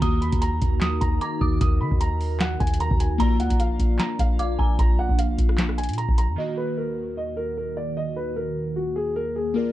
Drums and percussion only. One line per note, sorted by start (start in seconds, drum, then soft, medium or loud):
0.02 kick loud
0.02 closed hi-hat medium
0.22 closed hi-hat medium
0.32 kick medium
0.32 closed hi-hat medium
0.42 closed hi-hat medium
0.62 kick medium
0.62 closed hi-hat medium
0.81 snare loud
0.81 clap medium
0.81 closed hi-hat medium
1.01 kick medium
1.01 closed hi-hat medium
1.21 closed hi-hat medium
1.41 kick medium
1.61 kick loud
1.61 closed hi-hat medium
1.91 kick medium
2.01 closed hi-hat medium
2.21 open hi-hat medium
2.40 snare loud
2.40 clap medium
2.40 closed hi-hat medium
2.60 kick medium
2.60 closed hi-hat soft
2.67 closed hi-hat medium
2.74 closed hi-hat medium
2.80 closed hi-hat medium
2.91 kick loud
3.00 closed hi-hat medium
3.20 kick loud
3.20 closed hi-hat medium
3.40 closed hi-hat medium
3.50 kick medium
3.50 closed hi-hat medium
3.60 closed hi-hat medium
3.80 kick medium
3.80 closed hi-hat medium
3.99 snare loud
3.99 clap medium
3.99 closed hi-hat medium
4.19 kick loud
4.19 closed hi-hat medium
4.39 closed hi-hat medium
4.59 kick medium
4.79 kick loud
4.79 closed hi-hat medium
5.09 kick medium
5.19 closed hi-hat medium
5.39 kick medium
5.39 closed hi-hat medium
5.49 cross-stick medium
5.58 snare loud
5.58 clap medium
5.58 closed hi-hat medium
5.69 cross-stick medium
5.78 closed hi-hat medium
5.83 closed hi-hat medium
5.89 closed hi-hat medium
5.93 closed hi-hat medium
5.98 closed hi-hat medium
6.09 kick loud
6.18 closed hi-hat medium